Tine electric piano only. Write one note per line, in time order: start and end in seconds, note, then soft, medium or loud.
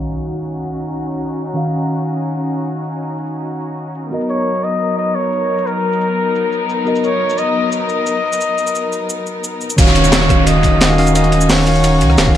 0.00 1.52 D#3 medium
0.00 1.53 C#4 medium
0.00 1.54 F#4 medium
0.00 1.54 F5 medium
1.54 4.10 D#3 medium
1.54 4.10 C#4 medium
1.54 4.11 F#4 medium
1.54 4.11 F5 medium
4.11 6.83 B3 medium
4.11 6.84 F#4 medium
4.11 6.85 A#4 medium
4.11 6.86 D#5 medium
6.85 9.58 B3 medium
6.85 9.59 F#4 medium
6.85 9.59 A#4 medium
6.85 9.60 D#5 medium
9.76 10.26 D#3 medium
9.76 10.27 C#4 medium
9.76 10.28 F#4 medium
9.76 10.28 F5 loud
10.28 10.87 D#3 medium
10.28 10.88 C#4 medium
10.28 10.88 F#4 medium
10.28 10.89 F5 medium
10.89 10.96 D#3 medium
10.89 10.96 C#4 medium
10.89 10.96 F#4 medium
10.89 10.97 F5 medium
10.97 11.13 D#3 loud
10.97 11.13 C#4 medium
10.97 11.13 F#4 medium
10.97 11.14 F5 loud
11.14 11.64 D#3 medium
11.14 11.64 C#4 medium
11.14 11.65 F#4 medium
11.14 11.66 F5 medium
11.65 12.24 D#3 medium
11.65 12.25 C#4 medium
11.65 12.25 F#4 medium
11.65 12.26 F5 medium
12.26 12.33 D#3 medium
12.26 12.33 C#4 medium
12.26 12.33 F#4 medium
12.26 12.34 F5 loud